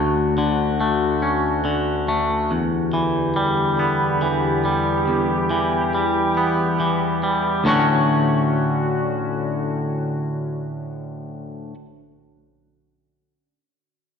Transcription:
Already playing: D2 D3 A3 C#4 F#4
0.38 D3
0.81 A3
1.22 C#4
1.65 D3
2.08 A3
2.51 E2 D3 G4
2.93 E3
3.36 G3
3.79 B3
4.22 E3
4.65 G3
5.08 E2 E3
5.50 E3
5.94 G3
6.37 B3
6.80 E3
7.23 G3
7.64 D2 A2 D3 A3 C#4 F#4
7.68 F#4

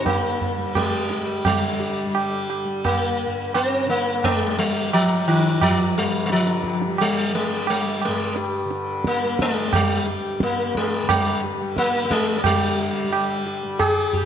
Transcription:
Already playing: G2 G3
0.00 D3
0.06 A#3, tabla na, tabla ge
0.41 tabla ge
0.57 G3
0.75 G#3 G4, tabla na, tabla ge
1.10 G4, tabla te
1.18 G3
1.44 D3 G3, tabla na, tabla ge
1.80 G4
2.05 G3
2.15 G4, tabla na
2.49 G4, tabla na
2.65 G3
2.84 A#3, tabla na, tabla ge
3.26 G2
3.54 C4, tabla na
3.85 D3
3.90 A#3
4.24 G#3, tabla na, tabla ge
4.46 G3
4.59 G3
4.93 F3, tabla na
5.06 G3
5.28 D#3, tabla na
5.61 F3, tabla na, tabla ge
5.67 G2
5.98 G3
6.26 D3 G3, tabla te
6.32 F3
6.47 tabla te
6.64 G4, tabla ke
6.82 tabla te
6.87 G3
6.98 G3, tabla na
7.35 G#3
7.46 G3
7.67 G3, tabla na
8.02 G#3, tabla na
8.07 G2
8.36 G4, tabla te
8.65 D3
8.71 tabla te
9.04 A#3, tabla ke
9.24 G3
9.39 G#3, tabla ke
9.73 G3, tabla na, tabla ge
9.82 G3
10.07 G4
10.40 G2 A#3, tabla ke
10.75 G#3, tabla ke
11.02 D3
11.09 G3, tabla na, tabla ge
11.43 G4
11.61 G3
11.77 A#3, tabla ke
12.05 A#3
12.11 G#3, tabla ke
12.21 G3
12.39 G#3
12.44 D3 G3 G4, tabla na, tabla ge
12.81 G4
13.04 G3
13.13 G4, tabla na
13.46 G4
13.63 G3
13.79 G#4, tabla na, tabla ge
14.13 G4, tabla ge
14.21 G2

